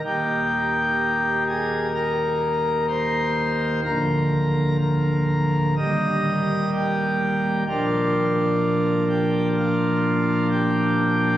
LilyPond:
<<
  \new Staff \with { instrumentName = "Pipe organ" } { \time 4/4 \key ees \major \tempo 4 = 63 g'4. aes'8 bes'4 c''4 | bes'4 bes'4 ees''4 g'4 | f'4. g'8 f'4 g'4 | }
  \new Staff \with { instrumentName = "Pipe organ" } { \clef bass \time 4/4 \key ees \major <ees,, ees, ees bes>1 | <d,, d, f bes>2 <ees,, ees, g bes>2 | <bes,, bes, f bes d'>1 | }
>>